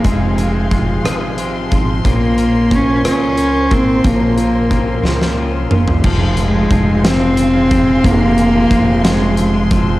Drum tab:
CC |------------|------------|------------|x-----------|
HH |x-x-x-x-x-x-|x-x-x-x-x-x-|x-x-x-------|--x-x-x-x-x-|
SD |------r-----|------r-----|------oo----|------o-----|
T2 |------------|------------|----------o-|------------|
FT |------------|------------|-----------o|------------|
BD |o---o-----o-|o---o-----o-|o---o-------|o---o-----o-|

CC |------------|
HH |x-x-x-x-x-x-|
SD |------o-----|
T2 |------------|
FT |------------|
BD |o---o-----o-|